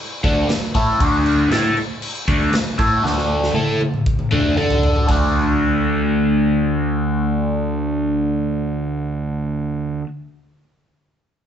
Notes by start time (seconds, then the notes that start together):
0.24 D2 D3 A3 D4, kick, crash
0.49 muted fingered electric bass stroke, muted overdriven electric guitar stroke, snare, crash
0.63 snare
0.74 A2 A3 E4 A4, kick, crash
1.00 D2 D3 A3 D4, kick, crash
1.26 crash
1.51 A2 A3 E4 A4, snare, crash
1.77 crash
2.02 crash
2.28 D2 D3 A3 D4, kick, crash
2.53 muted fingered electric bass stroke, muted overdriven electric guitar stroke, snare, crash
2.67 snare
2.78 A2 A3 E4 A4, kick, crash
3.03 D2 D3 A3 D4, snare
3.18 snare
3.43 snare
3.54 A2 A3 E4 A4, high tom
3.81 high tom
3.94 mid tom
4.06 kick
4.19 mid tom
4.31 D2 D3 A3 D4, mid tom
4.56 D3 D4 A4 D5, mid tom
4.70 floor tom
4.83 floor tom
4.96 floor tom
5.07 D2 D3 A3 D4, kick, crash